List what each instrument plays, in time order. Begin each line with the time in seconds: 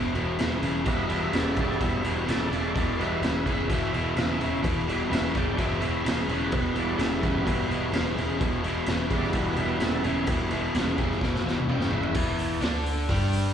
Already playing: picked electric bass E1, overdriven electric guitar E2 B2
0.14 picked electric bass E1, overdriven electric guitar E2 B2, crash
0.39 picked electric bass E1, overdriven electric guitar E2 C#3, snare, crash
0.62 picked electric bass E1, overdriven electric guitar E2 C#3, crash
0.85 picked electric bass E1, overdriven electric guitar E2 B2, tonewheel organ G3 B3 E4 B4 D#5, kick, crash
0.90 tonewheel organ E5
1.08 overdriven electric guitar E2 B2, tonewheel organ B4, crash
1.13 tonewheel organ E5
1.32 picked electric bass E1, overdriven electric guitar E2 C#3, tonewheel organ A4 D5, snare, crash
1.56 picked electric bass E1, overdriven electric guitar E2 C#3, tonewheel organ A4, kick, crash
1.60 tonewheel organ D5
1.71 snare
1.80 picked electric bass E1, overdriven electric guitar E2 B2, tonewheel organ E5, kick, crash
2.00 overdriven electric guitar E2, tonewheel organ G3 B3 E4
2.04 picked electric bass E1, overdriven electric guitar B2, crash
2.25 picked electric bass E1, overdriven electric guitar E2 C#3, tonewheel organ A4 C#5, crash
2.30 tonewheel organ D5, snare
2.51 picked electric bass E1, overdriven electric guitar E2 C#3, tonewheel organ A4 D5, crash
2.74 picked electric bass E1, overdriven electric guitar E2 B2, tonewheel organ A4 D5, kick, crash
2.98 overdriven electric guitar E2 B2, tonewheel organ G3 B3 E4 B4 E5, crash
3.22 picked electric bass E1, overdriven electric guitar E2 C#3, snare, crash
3.27 tonewheel organ B4 E5
3.46 picked electric bass E1, overdriven electric guitar E2 C#3, kick, crash
3.51 tonewheel organ B4 E5
3.69 picked electric bass E1, overdriven electric guitar E2 B2, tonewheel organ D#5 E5, kick, crash
3.93 picked electric bass E1, overdriven electric guitar E2 B2, crash
4.16 picked electric bass E1, overdriven electric guitar E2 C#3, snare, crash
4.30 snare
4.40 picked electric bass E1, overdriven electric guitar E2 C#3, crash
4.63 picked electric bass E1, overdriven electric guitar E2 B2, kick, crash
4.87 overdriven electric guitar E2 B2, tonewheel organ G3 B3 E4, crash
5.08 picked electric bass E1, overdriven electric guitar E2 C#3, tonewheel organ B4 D#5
5.13 tonewheel organ E5, snare, crash
5.34 picked electric bass E1, overdriven electric guitar E2 C#3, tonewheel organ D5 G5, kick, crash
5.56 picked electric bass E1, overdriven electric guitar E2 B2, tonewheel organ E5, kick, crash
5.80 picked electric bass E1, overdriven electric guitar E2 B2, crash
6.04 picked electric bass E1, overdriven electric guitar E2 C#3, snare, crash
6.27 picked electric bass E1, overdriven electric guitar E2 C#3, tonewheel organ A#4, crash
6.32 tonewheel organ B4
6.51 picked electric bass E1, overdriven electric guitar E2 B2, kick, crash
6.75 overdriven electric guitar E2 B2, tonewheel organ G3 B3, crash
6.79 tonewheel organ E4 D5
6.97 picked electric bass E1, overdriven electric guitar E2 C#3, snare, crash
7.02 tonewheel organ A4
7.21 picked electric bass E1, overdriven electric guitar E2 C#3, tonewheel organ A#4, kick, crash
7.27 tonewheel organ B4
7.45 picked electric bass E1, overdriven electric guitar E2 B2, tonewheel organ A#4, kick, crash
7.51 tonewheel organ B4
7.68 picked electric bass E1, overdriven electric guitar E2 B2, crash
7.72 tonewheel organ G3 B3 E4
7.91 picked electric bass E1, overdriven electric guitar E2 C#3, snare, crash
8.08 snare
8.15 picked electric bass E1, overdriven electric guitar E2 C#3, crash
8.38 picked electric bass E1, overdriven electric guitar E2 B2, kick, crash
8.63 overdriven electric guitar E2 B2, crash
8.86 picked electric bass E1, overdriven electric guitar E2 C#3, snare, crash
9.10 picked electric bass E1, overdriven electric guitar E2 C#3, tonewheel organ G3 B3 E4, kick, crash
9.16 tonewheel organ D5
9.23 snare
9.33 picked electric bass E1, overdriven electric guitar E2 B2, tonewheel organ B4, kick, crash
9.56 picked electric bass E1, overdriven electric guitar E2 B2, tonewheel organ B4, crash
9.79 picked electric bass E1, overdriven electric guitar E2 C#3, tonewheel organ G3 B3 G#4, snare, crash
9.83 tonewheel organ E4 A4
10.03 picked electric bass E1, overdriven electric guitar E2 C#3, crash
10.08 tonewheel organ E4
10.27 picked electric bass E1, overdriven electric guitar E2 B2, tonewheel organ G3 B3 E4, kick, crash
10.51 overdriven electric guitar E2 B2, crash
10.75 picked electric bass E1, overdriven electric guitar E2 C#3, snare, crash
10.96 picked electric bass E1, overdriven electric guitar E2 C#3, tonewheel organ G3 B3 E4, kick, crash
11.11 snare
11.21 picked electric bass E1, overdriven electric guitar E2 B2, kick, snare
11.35 snare
11.44 picked electric bass E1, overdriven electric guitar E2 B2, snare
11.57 mid tom
11.67 picked electric bass E1, overdriven electric guitar E2 C#3, mid tom
11.72 tonewheel organ G5
11.81 snare
11.91 picked electric bass E1, overdriven electric guitar E2 C#3, tonewheel organ B4 E5, floor tom
12.03 floor tom
12.14 picked electric bass E1, overdriven electric guitar E2 E3, kick, crash
12.38 open hi-hat
12.61 picked electric bass D2, overdriven electric guitar D3 D4, snare, open hi-hat
12.86 open hi-hat
13.08 picked electric bass G1, overdriven electric guitar G2 G3, kick, open hi-hat
13.33 open hi-hat